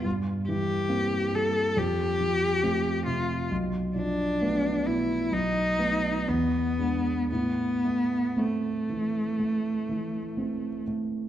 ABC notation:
X:1
M:4/4
L:1/8
Q:1/4=66
K:Am
V:1 name="Cello"
z G2 A G3 F | z D2 E ^D2 B,2 | B,2 A,4- A, z |]
V:2 name="Grand piano"
G,, E, [_B,C] G, F,, F, [A,C] C, | B,,, F, [A,B,] B,, B,,, [A,B,] E,, [^G,D] | A,, A, [A,C] E, A, E, [A,C] A, |]